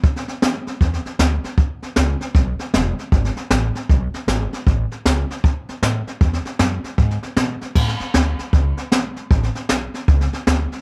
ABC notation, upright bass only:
X:1
M:4/4
L:1/8
Q:"Swing" 1/4=155
K:A
V:1 name="Upright bass" clef=bass
z2 F,, z E,, z D,, z | z2 C,, z B,,, z E,,, z | G,,, z A,,, z B,,, z G,,, z | A,,, z C,, z D,, z A,, z |
E,, z F,, z G,, z B,, z | A,, z D,, z C,, z B,,, z | A,,, z B,,, z C,, z D,, z |]